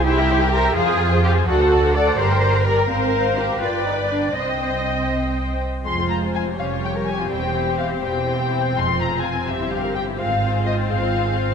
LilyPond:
<<
  \new Staff \with { instrumentName = "Violin section" } { \time 6/8 \key c \minor \tempo 4. = 83 e''16 g''16 e''16 g''16 e''16 g''16 f''16 aes''16 f''16 aes''16 f''16 aes''16 | fis''16 a''16 fis''16 a''16 fis''16 a''16 bes''16 g''16 bes''16 g''16 bes''16 g''16 | f''4. g''4. | g''2~ g''8 r8 |
\key f \minor c'''8 bes''8 aes''8 f''8 g''8 aes''8 | g''4 f''8 g''4. | c'''8 bes''8 aes''8 e''8 f''8 g''8 | f''4 ees''8 f''4. | }
  \new Staff \with { instrumentName = "Viola section" } { \time 6/8 \key c \minor << { c''16 e''16 c''16 e''16 c''16 e''16 c''16 aes'16 c''16 aes'16 c''16 aes'16 | d''16 fis''16 d''16 fis''16 d''16 fis''16 d''16 bes'16 d''16 bes'16 d''16 bes'16 | c''4. d''4. | ees''2~ ees''8 r8 |
\key f \minor f'4. g'4.~ | g'2. | f'4. g'4. | f'2. | } \\ { g'16 bes'16 g'16 bes'16 g'16 bes'16 aes'16 c''16 aes'16 c''16 aes'16 c''16 | a'16 c''16 a'16 c''16 a'16 c''16 g'16 bes'16 g'16 bes'16 g'16 bes'16 | c''4. b'4. | c''2~ c''8 r8 |
aes4. g4. | c'2.~ | c'2. | c'2. | } >> }
  \new Staff \with { instrumentName = "Violin section" } { \time 6/8 \key c \minor << { g'4. f'4. | a'4. bes'4.~ | bes'4. d''4. | ees''2~ ees''16 r8. |
\key f \minor c''4. des''4. | c''2.~ | c''2. | c''2. | } \\ { r2. | r2. | r2. | r2. |
aes16 c'16 f'16 aes'16 f'16 c'16 des'16 f'16 g'16 bes'16 g'16 f'16 | g16 c'16 e'16 g'16 e'16 c'16 g16 c'16 e'16 g'16 e'16 c'16 | aes16 c'16 f'16 aes'16 f'16 c'16 c'16 e'16 g'16 bes'16 g'16 e'16 | aes16 c'16 f'16 aes'16 f'16 c'16 aes16 c'16 f'16 aes'16 f'16 c'16 | } >> }
  \new Staff \with { instrumentName = "Cello section" } { \time 6/8 \key c \minor e'4 bes'8 aes'4 g'8 | fis'4 d''8 c''4 bes'8 | c'4 g'8 f'8 ees'8 d'8 | c'2~ c'8 r8 |
\key f \minor f,4. f,4. | e,4. e,4. | f,4. g,4. | aes,4. aes,4. | }
  \new Staff \with { instrumentName = "Double bass section" } { \clef bass \time 6/8 \key c \minor c,4. f,4. | d,4. g,,4. | aes,,4. g,,4. | c,2~ c,8 r8 |
\key f \minor f,,4. f,,4. | e,,4. e,,4. | f,,4. g,,4. | aes,,4. aes,,4. | }
>>